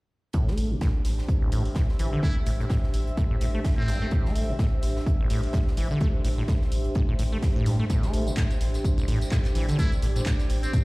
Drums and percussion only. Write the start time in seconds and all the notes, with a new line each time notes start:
0.33 kick, closed hi-hat
0.48 snare
0.57 closed hi-hat, open hi-hat
0.81 kick, snare, closed hi-hat
1.05 snare, closed hi-hat, open hi-hat
1.18 snare
1.28 kick, closed hi-hat
1.52 closed hi-hat, open hi-hat
1.65 open hi-hat
1.75 kick, snare, closed hi-hat
1.89 snare
1.99 closed hi-hat, open hi-hat
2.23 kick, closed hi-hat
2.46 closed hi-hat, open hi-hat
2.61 closed hi-hat
2.70 kick, snare, closed hi-hat
2.83 snare
2.94 closed hi-hat, open hi-hat
3.07 closed hi-hat
3.17 kick, closed hi-hat
3.41 closed hi-hat, open hi-hat
3.64 kick, snare, closed hi-hat, open hi-hat
3.88 closed hi-hat, open hi-hat
4.11 kick, closed hi-hat
4.26 snare
4.36 closed hi-hat, open hi-hat
4.59 kick, snare, closed hi-hat
4.82 snare, closed hi-hat, open hi-hat
4.96 snare
5.06 kick, closed hi-hat
5.30 closed hi-hat, open hi-hat
5.43 open hi-hat
5.53 kick, snare, closed hi-hat
5.67 snare
5.77 closed hi-hat, open hi-hat
6.01 kick, closed hi-hat
6.25 open hi-hat
6.48 kick, snare, closed hi-hat
6.62 snare
6.72 closed hi-hat, open hi-hat
6.84 closed hi-hat
6.95 kick, closed hi-hat
7.19 closed hi-hat, open hi-hat
7.42 kick, snare, closed hi-hat, open hi-hat
7.66 closed hi-hat, open hi-hat
7.90 kick, closed hi-hat, tambourine
8.03 snare, closed hi-hat, tambourine
8.13 closed hi-hat, open hi-hat
8.27 closed hi-hat, tambourine
8.37 kick, snare, clap, closed hi-hat, tambourine
8.51 closed hi-hat, tambourine
8.61 snare, closed hi-hat, open hi-hat
8.74 snare, closed hi-hat, tambourine
8.84 kick, closed hi-hat, tambourine
8.98 closed hi-hat, tambourine
9.08 closed hi-hat, open hi-hat
9.21 open hi-hat, tambourine
9.31 kick, snare, clap, closed hi-hat, tambourine
9.45 snare, clap, closed hi-hat, tambourine
9.55 closed hi-hat, open hi-hat
9.69 closed hi-hat, tambourine
9.79 kick, closed hi-hat, tambourine
9.92 closed hi-hat, tambourine
10.02 closed hi-hat, open hi-hat
10.16 closed hi-hat, tambourine
10.26 kick, snare, clap, closed hi-hat, tambourine
10.40 snare, closed hi-hat, tambourine
10.50 closed hi-hat, open hi-hat
10.63 closed hi-hat, tambourine
10.73 kick, closed hi-hat, tambourine